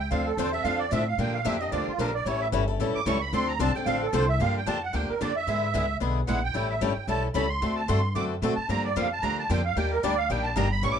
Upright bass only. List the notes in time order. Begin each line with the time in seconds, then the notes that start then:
Already playing: C#2
0.11 D2
0.37 E2
0.64 F2
0.92 A2
1.18 A#2
1.45 F2
1.72 D2
1.88 muted upright bass stroke
1.98 A#1
2.25 A1
2.52 G1
2.80 A1
2.95 muted upright bass stroke
3.06 C#2
3.33 D2
3.59 C2
3.75 muted upright bass stroke
3.85 A1
4.13 C2
4.40 G2
4.67 F2
4.94 D2
5.10 muted upright bass stroke
5.21 F2
5.47 G#2
5.74 C#2
6.01 B1
6.29 A#1
6.55 A1
6.81 G1
6.96 muted upright bass stroke
7.07 B1
7.35 C#2
7.62 D2
7.89 G2
8.15 F#2
8.42 A#2
8.57 muted upright bass stroke
8.69 G2
8.96 F2
9.23 D2
9.50 F2
9.76 D#2
10.04 D2
10.30 A#1
10.56 G1
10.82 A1